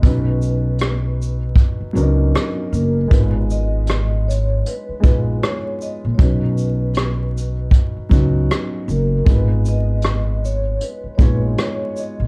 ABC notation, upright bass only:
X:1
M:4/4
L:1/16
Q:"Swing 16ths" 1/4=78
K:G#dor
V:1 name="Upright bass" clef=bass
B,,,8 z2 C,,2 z2 F,,,2 | G,,,8 z2 A,,,2 z3 A,,, | B,,,8 z2 C,,2 z2 F,,,2 | G,,,8 z2 A,,,2 z3 A,,, |]